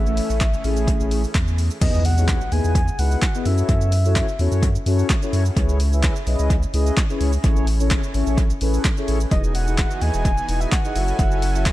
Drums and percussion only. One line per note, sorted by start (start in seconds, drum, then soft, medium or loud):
0.06 shaker soft
0.17 open hi-hat medium
0.17 shaker medium
0.30 shaker medium
0.41 kick loud
0.41 clap loud
0.41 closed hi-hat medium
0.41 shaker medium
0.54 shaker medium
0.64 open hi-hat medium
0.64 shaker medium
0.77 shaker medium
0.88 kick loud
0.88 closed hi-hat medium
0.88 shaker medium
1.00 shaker medium
1.11 open hi-hat medium
1.11 shaker medium
1.24 shaker medium
1.35 kick loud
1.35 clap loud
1.35 closed hi-hat medium
1.35 shaker medium
1.48 shaker medium
1.58 open hi-hat medium
1.58 shaker medium
1.70 shaker medium
1.81 kick loud
1.81 closed hi-hat medium
1.81 crash loud
1.81 shaker medium
1.94 shaker medium
2.05 open hi-hat medium
2.05 shaker medium
2.18 shaker medium
2.28 kick loud
2.28 clap loud
2.28 closed hi-hat medium
2.28 shaker medium
2.41 shaker medium
2.52 open hi-hat medium
2.52 shaker medium
2.64 shaker medium
2.75 kick loud
2.75 closed hi-hat medium
2.75 shaker medium
2.88 shaker medium
2.99 open hi-hat medium
2.99 shaker medium
3.11 shaker medium
3.22 kick loud
3.22 clap loud
3.22 closed hi-hat medium
3.22 shaker medium
3.35 shaker medium
3.46 open hi-hat medium
3.46 shaker medium
3.58 shaker medium
3.69 kick loud
3.69 closed hi-hat medium
3.69 shaker medium
3.81 shaker medium
3.92 open hi-hat medium
3.92 shaker medium
4.05 shaker medium
4.16 kick loud
4.16 clap loud
4.16 closed hi-hat medium
4.16 shaker medium
4.28 shaker medium
4.39 open hi-hat medium
4.39 shaker medium
4.52 shaker medium
4.63 kick loud
4.63 closed hi-hat medium
4.63 shaker medium
4.75 shaker medium
4.86 open hi-hat medium
4.86 shaker medium
4.99 shaker medium
5.10 kick loud
5.10 clap loud
5.10 closed hi-hat medium
5.10 shaker medium
5.22 shaker medium
5.33 open hi-hat medium
5.33 shaker medium
5.46 shaker medium
5.57 kick loud
5.57 closed hi-hat medium
5.57 shaker medium
5.69 shaker medium
5.80 open hi-hat medium
5.80 shaker medium
5.93 shaker medium
6.03 kick loud
6.03 clap loud
6.03 closed hi-hat medium
6.03 shaker medium
6.16 shaker medium
6.27 open hi-hat medium
6.27 shaker medium
6.39 shaker medium
6.50 kick loud
6.50 closed hi-hat medium
6.50 shaker medium
6.63 shaker medium
6.74 open hi-hat medium
6.74 shaker medium
6.86 shaker medium
6.97 kick loud
6.97 clap loud
6.97 closed hi-hat medium
6.97 shaker medium
7.10 shaker medium
7.21 open hi-hat medium
7.21 shaker medium
7.33 shaker medium
7.44 kick loud
7.44 closed hi-hat medium
7.44 shaker medium
7.56 shaker medium
7.67 open hi-hat medium
7.67 shaker medium
7.80 shaker medium
7.91 kick loud
7.91 clap loud
7.91 closed hi-hat medium
7.91 shaker medium
8.04 shaker medium
8.14 open hi-hat medium
8.14 shaker medium
8.27 shaker medium
8.38 kick loud
8.38 closed hi-hat medium
8.38 shaker medium
8.50 shaker medium
8.61 open hi-hat medium
8.61 shaker medium
8.74 shaker medium
8.85 kick loud
8.85 clap loud
8.85 closed hi-hat medium
8.85 shaker medium
8.97 shaker medium
9.08 open hi-hat medium
9.08 shaker medium
9.20 shaker medium
9.31 kick loud
9.31 closed hi-hat medium
9.31 shaker medium
9.44 shaker medium
9.55 open hi-hat medium
9.55 shaker medium
9.68 shaker medium
9.78 kick loud
9.78 clap loud
9.78 closed hi-hat medium
9.78 shaker medium
9.91 shaker medium
10.01 open hi-hat medium
10.01 shaker medium
10.14 shaker medium
10.25 kick loud
10.25 closed hi-hat medium
10.25 shaker medium
10.37 shaker medium
10.49 open hi-hat medium
10.49 shaker medium
10.61 shaker medium
10.72 kick loud
10.72 clap loud
10.72 closed hi-hat medium
10.72 shaker medium
10.85 shaker medium
10.96 open hi-hat medium
10.96 shaker medium
11.08 shaker medium
11.19 kick loud
11.19 closed hi-hat medium
11.19 shaker medium
11.31 shaker soft
11.42 open hi-hat medium
11.42 shaker medium
11.55 shaker medium
11.66 kick loud
11.66 clap loud
11.66 closed hi-hat medium
11.66 shaker medium